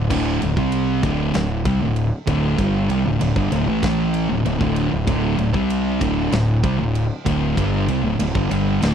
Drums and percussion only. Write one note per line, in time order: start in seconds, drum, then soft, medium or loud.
0.10 kick loud
0.10 crash loud
0.42 ride medium
0.57 kick loud
0.72 ride loud
1.03 kick loud
1.03 ride medium
1.34 snare loud
1.34 ride loud
1.65 kick loud
1.65 ride medium
1.96 ride medium
2.27 kick loud
2.27 ride medium
2.58 kick loud
2.58 ride loud
2.90 ride medium
3.21 ride loud
3.36 kick loud
3.52 ride medium
3.83 kick loud
3.83 snare loud
3.83 ride loud
4.14 ride medium
4.46 ride medium
4.61 kick loud
4.76 ride medium
5.07 kick loud
5.07 ride medium
5.39 ride medium
5.54 kick medium
5.70 ride loud
6.01 kick loud
6.01 ride medium
6.32 snare loud
6.32 ride loud
6.64 kick loud
6.64 ride medium
6.95 ride loud
7.26 kick loud
7.26 ride medium
7.57 kick loud
7.57 ride loud
7.88 ride medium
8.20 ride loud
8.35 kick loud
8.51 ride medium
8.82 snare loud
8.82 ride loud